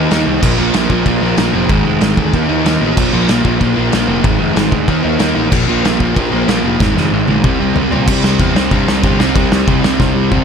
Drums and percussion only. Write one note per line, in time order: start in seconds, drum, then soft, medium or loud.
0.11 snare loud
0.11 ride medium
0.43 kick loud
0.43 crash loud
0.74 snare loud
0.74 ride medium
0.90 kick medium
1.06 kick loud
1.06 ride medium
1.37 snare loud
1.37 ride medium
1.69 kick loud
1.69 ride medium
2.01 snare loud
2.01 ride medium
2.17 kick medium
2.34 kick medium
2.34 ride medium
2.66 snare loud
2.66 ride medium
2.97 kick loud
2.97 crash loud
3.29 snare loud
3.29 ride medium
3.45 kick loud
3.61 kick medium
3.61 ride medium
3.92 snare loud
3.92 ride medium
4.24 kick loud
4.24 ride medium
4.56 snare loud
4.56 ride medium
4.72 kick medium
4.88 kick medium
4.88 ride medium
5.19 snare loud
5.19 ride medium
5.52 kick loud
5.52 crash loud
5.85 snare loud
5.85 ride medium
6.00 kick medium
6.16 kick medium
6.16 ride medium
6.48 snare loud
6.48 ride medium
6.80 kick loud
6.80 snare medium
6.97 snare medium
7.28 high tom medium
7.44 kick loud
7.44 mid tom medium
7.76 floor tom medium
7.92 floor tom medium
8.08 kick loud
8.08 crash loud
8.08 crash medium
8.24 snare loud
8.39 kick loud
8.39 crash medium
8.56 snare loud
8.71 kick loud
8.71 crash medium
8.89 snare loud
9.03 kick loud
9.03 crash medium
9.20 snare loud
9.36 kick loud
9.36 crash medium
9.52 snare loud
9.67 kick loud
9.67 crash medium
9.84 snare loud
10.00 kick loud
10.00 snare medium
10.32 kick loud
10.32 mid tom medium